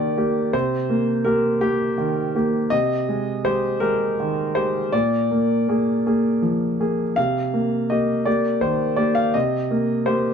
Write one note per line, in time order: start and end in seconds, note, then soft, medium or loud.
0.00 0.50 C3 soft
0.00 0.39 D#3 soft
0.00 0.17 A#3 soft
0.00 0.18 G4 medium
0.00 0.53 D5 medium
0.17 0.49 A#3 soft
0.17 0.50 G4 soft
0.53 2.67 C3 soft
0.53 1.25 C5 medium
0.90 1.23 A#3 soft
1.24 1.57 A#3 soft
1.24 1.58 G4 soft
1.24 1.60 A#4 medium
1.61 1.94 A#3 soft
1.61 2.34 G4 medium
1.98 2.57 D#3 soft
2.35 2.68 A#3 soft
2.35 2.68 G4 soft
2.70 4.88 C3 medium
2.70 3.44 D#5 medium
3.09 3.44 G#3 soft
3.45 3.78 G#3 soft
3.45 3.78 G4 soft
3.45 3.81 C5 medium
3.80 4.14 G#3 soft
3.80 4.14 G4 soft
3.80 4.54 A#4 medium
4.20 4.78 D#3 soft
4.55 4.89 G#3 soft
4.55 4.89 G4 soft
4.55 4.92 C5 medium
4.92 7.13 A#2 soft
4.92 6.79 D5 medium
5.31 5.67 A#3 soft
5.68 6.01 A#3 soft
5.68 6.02 G#4 soft
6.07 6.39 A#3 soft
6.07 6.39 G#4 soft
6.42 7.02 F3 soft
6.80 7.13 A#3 soft
6.80 7.13 G#4 soft
7.16 9.31 C3 soft
7.16 7.89 F5 medium
7.54 7.90 A#3 soft
7.90 8.23 A#3 soft
7.90 8.23 G4 soft
7.90 8.26 D#5 medium
8.26 8.59 A#3 soft
8.26 8.59 G4 soft
8.26 8.62 D5 medium
8.61 9.20 D#3 soft
8.61 8.98 C5 medium
8.96 9.31 A#3 soft
8.96 9.31 G4 soft
8.96 9.16 D5 medium
9.15 9.34 F5 medium
9.34 10.34 C3 soft
9.34 10.06 D#5 medium
9.71 10.06 A#3 soft
10.06 10.34 A#3 soft
10.06 10.34 G4 soft
10.06 10.34 C5 medium